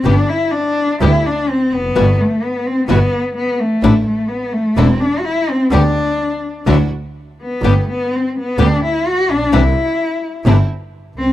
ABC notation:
X:1
M:4/4
L:1/16
Q:1/4=127
K:G
V:1 name="String section"
[A,B,G]2 z6 [A,B,G]2 z6 | [G,EF]2 z6 [G,EF]2 z6 | [A,DE]2 z6 [A,DE]2 z6 | [B,DG]2 z6 [DEF]2 z6 |
[A,B,G]2 z6 [A,B,G]2 z6 | [CDE]2 z6 [CDE]2 z6 |]
V:2 name="Cello"
D2 E2 D4 E2 D2 C2 B,2- | B,2 A,2 B,2 C2 B,4 B,2 A,2- | A,2 A,2 B,2 A,2 C2 D3/2 F/2 E2 C2 | D8 z6 B,2- |
B,2 B,2 C2 B,2 D2 E2 F2 D2 | E8 z6 C2 |]
V:3 name="Nylon-string guitar"
[D,G,B,G]2 z6 [D,G,B,G]2 z6 | [B,,E,G,B,F]2 z6 [B,,E,G,B,F]2 z6 | [D,A,DE]2 z6 [D,A,DE]2 z6 | [D,G,B,G]2 z6 [D,F,A,EF]2 z6 |
[D,G,B,G]2 z6 [D,G,B,G]2 z6 | [C,E,G,DE]2 z6 [C,E,G,DE]2 z6 |]
V:4 name="Double bass" clef=bass
G,,,2 z6 D,,2 z4 =F,,,2 | G,,,2 z6 G,,,2 z6 | A,,,2 z6 E,,,2 z6 | D,,2 z6 D,,2 z6 |
G,,,2 z6 D,,2 z4 _B,,,2 | C,,2 z6 G,,,2 z4 C,,2 |]